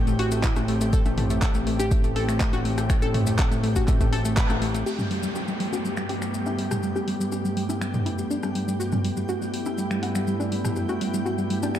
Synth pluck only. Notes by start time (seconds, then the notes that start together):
0.07 A3
0.19 F#4
0.32 A3
0.44 E4
0.56 A3
0.68 A3
0.81 A3
0.93 A4
1.06 A3
1.18 A3
1.30 A3
1.42 A4
1.55 A3
1.67 A3
1.79 G4
1.91 A3
2.04 A3
2.16 A4
2.28 A3
2.40 A3
2.53 F#4
2.65 A3
2.78 A3
2.90 A3
3.02 A4
3.14 A3
3.27 A3
3.39 A4
3.51 A3
3.63 A3
3.76 F#4
3.88 A3
4.01 A3
4.13 A4
4.25 A3
4.37 B4
4.50 A3
4.62 A3
4.74 A3
4.86 G4
4.99 G3
5.11 G3
5.23 G3
5.35 G4
5.48 G3
5.60 G3
5.73 F#4
5.85 G3
5.97 G3
6.09 G4
6.22 G3
6.34 G3
6.46 E4
6.58 G3
6.71 G3
6.83 G3
6.96 G4
7.08 G3
7.20 G3
7.32 G4
7.45 G3
7.57 G3
7.69 E4
7.81 G3
7.94 G3
8.06 E4
8.19 G3
8.30 D4
8.43 G3
8.55 G3
8.68 G3
8.80 F#4
8.92 G3
9.04 G3
9.17 G3
9.29 F#4
9.42 G3
9.53 G3
9.66 E4
9.78 G3
9.91 G3
10.03 F#4
10.15 G3
10.27 G3
10.40 D4
10.52 G3
10.65 G3
10.76 G3
10.89 F#4
11.01 G3
11.14 G3
11.26 F#4
11.38 G3
11.50 G3
11.63 D4
11.75 G3